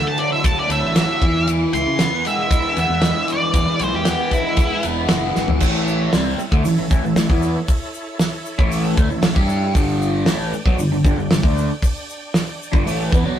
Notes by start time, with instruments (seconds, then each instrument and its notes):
Already playing: overdriven electric guitar D3 F#3 A3, tonewheel organ A3 E4 F#4 D5
0.07 lead electric guitar A5
0.18 overdriven electric guitar F#3, lead electric guitar D5, ride
0.32 lead electric guitar E5
0.44 overdriven electric guitar E4, lead electric guitar A5, kick, ride, shaker
0.59 lead electric guitar D5
0.69 fingered electric bass D2, overdriven electric guitar A3, lead electric guitar E5, ride, shaker
0.83 fingered electric bass A1
0.95 overdriven electric guitar F#3, lead electric guitar E5, snare, ride, shaker
1.22 fingered electric bass E2, overdriven electric guitar E3, tonewheel organ G#3 B3 E4 E5, kick, ride
1.47 overdriven electric guitar E3, ride, shaker
1.73 fingered electric bass C#2, overdriven electric guitar E3, lead electric guitar C6, ride, shaker
1.86 fingered electric bass C#3
1.99 overdriven electric guitar B3, snare, ride, shaker
2.25 overdriven electric guitar G#3, lead electric guitar E5, ride, shaker
2.51 overdriven electric guitar E4, kick, ride, shaker
2.77 fingered electric bass E2, overdriven electric guitar B3, lead electric guitar E5, ride, shaker
2.89 fingered electric bass E2
3.02 overdriven electric guitar G#3, snare, ride, shaker
3.27 overdriven electric guitar E3, ride, shaker
3.32 lead electric guitar D5
3.54 fingered electric bass E2, overdriven electric guitar E3, kick, ride, shaker
3.79 fingered electric bass B1, overdriven electric guitar E3, ride, shaker
3.84 lead electric guitar C5
3.93 fingered electric bass E2, lead electric guitar G4
4.05 overdriven electric guitar B3, snare, ride, shaker
4.31 overdriven electric guitar G#3, lead electric guitar E4, kick, ride, shaker
4.57 overdriven electric guitar E4, kick, ride, shaker
4.83 fingered electric bass E1, overdriven electric guitar B3, ride, shaker
5.09 fingered electric bass F#1, overdriven electric guitar G#3, snare, ride, shaker
5.36 fingered electric bass G#1, overdriven electric guitar E3, snare, shaker
5.48 floor tom
5.60 fingered electric bass A1, overdriven electric guitar A2 E3 A3, tonewheel organ E4 A4 C#5 E5, kick, crash, shaker
5.76 shaker
5.88 shaker
6.12 fingered electric bass C2, overdriven electric guitar C3 G3 C4, snare, open hi-hat, shaker
6.39 muted fingered electric bass stroke, muted overdriven electric guitar stroke, shaker
6.52 fingered electric bass D2, overdriven electric guitar D3 A3, kick, shaker
6.65 fingered electric bass A1, overdriven electric guitar A2 E3, open hi-hat, shaker
6.78 fingered electric bass A1, overdriven electric guitar A2 E3, shaker
6.90 fingered electric bass A1, overdriven electric guitar A2 E3, kick, shaker
7.04 fingered electric bass A1, overdriven electric guitar A2 E3, shaker
7.16 fingered electric bass A1, overdriven electric guitar A2 E3, snare, open hi-hat, shaker
7.29 fingered electric bass E2, overdriven electric guitar E3 B3 E4, kick, shaker
7.42 shaker
7.68 kick, open hi-hat, shaker
7.94 shaker
8.19 snare, open hi-hat, shaker
8.46 shaker
8.58 fingered electric bass A1, overdriven electric guitar A2 E3 A3, kick, shaker
8.71 open hi-hat, shaker
8.84 shaker
8.97 fingered electric bass D2, overdriven electric guitar D3 A3, kick, shaker
9.10 fingered electric bass A1, overdriven electric guitar A2 E3, shaker
9.22 fingered electric bass A1, overdriven electric guitar A2 E3, snare, open hi-hat, shaker
9.35 fingered electric bass G2, overdriven electric guitar G3 D4 G4, kick, shaker
9.49 shaker
9.74 fingered electric bass G1, overdriven electric guitar G2 D3 G3, tonewheel organ D4 D5 G5, kick, open hi-hat, shaker
9.89 shaker
10.02 shaker
10.26 fingered electric bass A1, overdriven electric guitar A2 E3 A3, snare, open hi-hat, shaker
10.52 muted fingered electric bass stroke, muted overdriven electric guitar stroke, shaker
10.66 fingered electric bass B1, overdriven electric guitar B2 F#3, kick, shaker
10.78 fingered electric bass G1, overdriven electric guitar G2 D3, open hi-hat, shaker
10.92 fingered electric bass G1, overdriven electric guitar G2 D3, shaker
11.04 fingered electric bass G1, overdriven electric guitar G2 D3, kick, shaker
11.18 fingered electric bass G1, overdriven electric guitar G2 D3, shaker
11.31 fingered electric bass G1, overdriven electric guitar G2 D3, snare, open hi-hat, shaker
11.43 fingered electric bass D2, overdriven electric guitar D3 A3 D4, kick, shaker
11.58 shaker
11.82 kick, open hi-hat, shaker
11.97 shaker
12.10 shaker
12.34 snare, open hi-hat, shaker
12.63 shaker
12.72 fingered electric bass G1, overdriven electric guitar G2 D3, kick, shaker
12.85 fingered electric bass A1, overdriven electric guitar A2 E3 A3, open hi-hat, shaker
13.01 shaker
13.12 fingered electric bass E2, overdriven electric guitar E3 B3, kick, shaker
13.25 fingered electric bass B1, overdriven electric guitar B2 F#3 B3